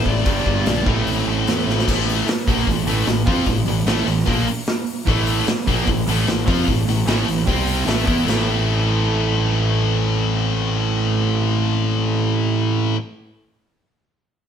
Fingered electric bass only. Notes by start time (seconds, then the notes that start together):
0.06 A1
0.26 G1
0.46 G1
0.66 A#1
0.87 A1
1.06 A1
1.27 A1
1.47 E2
1.67 A1
1.88 A1
2.27 muted fingered electric bass stroke
2.48 A#1
2.68 A1
2.86 A1
3.07 A1
3.28 F2
3.47 A1
3.66 A1
3.86 A1
4.06 A1
4.27 A#1
5.08 A1
5.48 muted fingered electric bass stroke
5.68 A#1
5.88 A1
6.08 A1
6.28 A1
6.48 F2
6.69 A1
6.87 A1
7.07 A1
7.28 A1
7.48 C2
7.87 A1
8.08 E2
8.27 A1